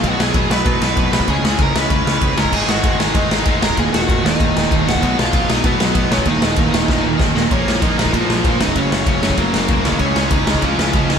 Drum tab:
CC |----------------|----------------|x---------------|----------------|
RD |x---x---x---x---|x---x---x---x---|----x---x---x---|x---x---x---x---|
SD |--o---o---o---o-|--o---o---o---o-|--o---o---o---o-|--o---o---o---o-|
BD |o---o---o---o--o|o---o---o---o--o|o---o---o---o--o|o---o---o---o--o|

CC |----------------|----------------|----------------|----------------|
RD |x---x---x---x---|x---x-----------|x---x---x---x---|x---x---x---x---|
SD |--o---o---o---o-|--o---o-o---o-o-|--o---o---o---o-|--o---o---o---o-|
BD |o---o---o---o--o|o---o---o---o---|o---o--oo---o--o|o---o--oo---o--o|

CC |----------------|
RD |x---x---x---x---|
SD |--o---o---o---o-|
BD |o---o--oo---o---|